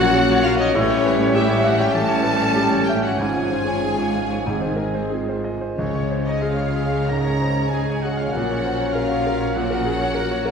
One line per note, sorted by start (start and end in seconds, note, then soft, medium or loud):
0.00 0.75 A#1 medium
0.00 0.74 A#2 medium
0.00 0.77 A#2 medium
0.00 0.71 F#3 medium
0.00 0.73 F#3 medium
0.00 0.15 F#3 medium
0.00 0.71 C#4 medium
0.00 0.72 C#4 medium
0.00 0.77 F4 medium
0.00 0.14 F#4 medium
0.00 0.43 F#4 loud
0.00 0.71 F#4 medium
0.00 0.77 C5 medium
0.00 0.31 C#5 medium
0.00 0.41 F#5 loud
0.00 0.44 F#5 medium
0.00 0.47 F#5 loud
0.14 0.30 C#3 medium
0.14 0.38 F#4 medium
0.29 0.44 F#3 medium
0.29 0.54 C#5 medium
0.42 0.59 A#3 medium
0.42 0.59 F4 medium
0.42 0.69 F#4 medium
0.42 0.58 F5 medium
0.42 0.59 F5 loud
0.42 0.60 F5 medium
0.57 0.75 C#4 medium
0.57 0.73 D#4 medium
0.57 0.74 D#5 medium
0.57 0.77 D#5 medium
0.61 0.75 C#5 medium
0.71 3.15 A1 medium
0.71 1.91 A2 medium
0.71 0.89 E3 medium
0.71 1.34 C#4 medium
0.71 1.33 C#5 loud
0.71 1.35 C#5 medium
0.71 1.36 C#5 medium
0.76 3.15 A2 medium
0.76 2.87 G3 medium
0.76 1.34 G3 medium
0.76 1.34 C#4 medium
0.76 3.66 C#4 medium
0.76 3.15 G4 medium
0.90 1.05 G3 medium
0.90 1.14 C#5 medium
1.04 1.19 A3 medium
1.04 1.20 B4 medium
1.19 1.34 C#4 medium
1.19 1.44 C#5 medium
1.34 1.95 G3 medium
1.34 1.49 A3 medium
1.34 1.95 C#4 medium
1.34 1.63 E4 medium
1.34 1.58 G4 medium
1.34 1.63 E5 medium
1.34 1.66 E5 medium
1.34 1.64 E5 medium
1.50 1.65 G3 medium
1.50 1.74 C#5 medium
1.64 1.80 E3 medium
1.64 1.79 F#4 medium
1.64 1.88 E5 medium
1.64 1.80 F#5 medium
1.64 1.79 F#5 medium
1.64 1.80 F#5 medium
1.78 1.95 G3 medium
1.78 1.94 G4 medium
1.78 2.03 C#5 medium
1.78 1.94 G5 medium
1.78 1.95 G5 medium
1.94 2.19 E3 medium
1.94 3.17 G3 medium
1.94 2.09 A3 medium
1.94 3.17 C#4 medium
1.94 2.86 A4 medium
1.94 2.86 A5 medium
1.94 2.86 A5 loud
1.94 2.89 A5 medium
2.08 2.25 C#4 medium
2.08 2.33 C#5 medium
2.23 2.40 A3 medium
2.23 2.39 B4 soft
2.38 2.55 G3 medium
2.38 2.64 C#5 medium
2.55 2.71 E3 medium
2.55 2.80 G4 medium
2.71 2.87 G3 medium
2.71 2.96 C#5 medium
2.86 3.03 A3 soft
2.86 3.02 G4 medium
2.86 3.13 E5 soft
2.86 3.02 G5 medium
2.86 3.04 G5 medium
3.02 3.18 C#4 soft
3.02 3.18 F#4 medium
3.02 3.19 C#5 soft
3.02 3.19 F#5 medium
3.02 3.20 F#5 medium
3.02 3.19 F#5 medium
3.17 5.53 G#1 medium
3.17 4.11 G#2 medium
3.17 5.52 G#2 medium
3.17 4.44 G#2 medium
3.17 3.33 C#3 soft
3.17 4.44 F3 medium
3.17 4.48 F3 medium
3.17 4.45 C#4 medium
3.17 4.44 F4 medium
3.17 5.11 G#4 medium
3.17 5.11 G#5 medium
3.34 3.50 F3 soft
3.34 3.61 C#5 soft
3.50 3.66 G#3 soft
3.50 3.67 C5 soft
3.66 3.83 C#4 soft
3.66 3.92 C#5 soft
3.81 3.98 G#3 soft
3.81 4.49 G#3 medium
3.81 4.09 G#4 soft
3.97 4.14 F3 soft
3.97 4.25 C#5 soft
4.15 4.31 C#3 soft
4.15 4.40 F5 soft
4.30 4.47 F3 soft
4.30 4.46 C#5 soft
4.46 5.72 G#2 medium
4.46 5.40 G#2 medium
4.46 4.62 C3 soft
4.46 8.34 G#3 soft
4.46 5.45 G#3 medium
4.46 5.15 C4 medium
4.46 5.43 C4 soft
4.46 5.57 G#4 soft
4.61 4.80 D#3 soft
4.61 4.88 C5 soft
4.76 4.95 G#3 soft
4.76 4.94 A#4 soft
4.94 5.11 C4 soft
4.94 5.21 C5 soft
5.10 5.28 G#3 soft
5.10 5.78 F4 medium
5.10 5.37 G#4 soft
5.29 5.45 D#3 soft
5.29 5.54 C5 soft
5.44 5.61 C3 soft
5.44 5.70 D#5 soft
5.61 5.78 D#3 soft
5.61 5.77 C5 soft
5.76 8.29 C#2 medium
5.76 7.04 C#2 medium
5.76 8.29 C#3 medium
5.76 6.70 C#3 medium
5.76 6.37 G#3 medium
5.76 6.21 C#4 medium
5.76 6.36 C#4 soft
5.76 10.51 C#4 soft
5.76 6.22 C#5 medium
5.76 6.28 C#5 medium
5.81 10.51 C#4 medium
5.81 8.30 G#4 soft
5.95 6.19 C#5 soft
6.11 6.26 C5 soft
6.25 6.41 D#4 soft
6.25 6.51 C#5 soft
6.25 6.41 D#5 medium
6.25 6.44 D#5 medium
6.40 7.68 G#3 medium
6.40 7.68 C#4 soft
6.40 7.07 F4 medium
6.40 6.68 G#4 soft
6.40 7.07 F5 medium
6.40 7.08 F5 medium
6.40 7.10 F5 medium
6.57 6.84 C#5 soft
6.76 7.02 G#4 soft
6.93 7.18 C#5 soft
7.08 7.34 G#2 soft
7.08 7.71 A#4 medium
7.08 7.71 A#5 medium
7.08 7.72 A#5 medium
7.24 7.49 C#5 soft
7.42 7.56 C5 soft
7.59 7.82 C#5 soft
7.70 8.32 G#3 soft
7.70 8.31 C#4 soft
7.70 8.01 G#4 medium
7.70 8.04 G#5 medium
7.70 8.02 G#5 medium
7.74 7.97 G#4 soft
7.90 8.13 C#5 soft
8.02 8.17 F#4 medium
8.02 8.28 G#4 soft
8.02 8.18 F#5 medium
8.17 8.32 F4 medium
8.17 8.31 F5 medium
8.17 8.33 F5 medium
8.22 8.35 C#5 soft
8.31 10.51 A#1 medium
8.31 10.51 A#2 medium
8.31 9.53 F#3 medium
8.31 10.48 F#3 soft
8.31 9.51 C#4 medium
8.31 8.92 F#4 medium
8.31 10.51 A#4 medium
8.31 8.94 F#5 medium
8.31 8.93 F#5 medium
8.31 8.94 F#5 medium
8.36 9.52 A#2 medium
8.51 8.73 C#5 soft
8.65 8.79 C5 soft
8.80 9.03 C#5 soft
8.92 9.53 F4 medium
8.92 9.18 A#4 soft
8.92 9.56 F5 medium
8.92 9.53 F5 medium
8.92 9.54 F5 medium
9.12 9.34 C#5 soft
9.27 9.49 A#4 medium
9.41 9.64 C#5 soft
9.54 10.51 A#2 medium
9.54 10.51 F#3 medium
9.54 10.51 C#4 medium
9.54 10.51 F#4 medium
9.54 10.51 F#5 medium
9.54 10.45 F#5 medium
9.71 9.94 A#4 medium
9.85 10.00 G#4 soft
10.01 10.24 C#5 medium
10.15 10.38 A#4 medium
10.31 10.51 C#5 medium
10.46 10.51 A#4 medium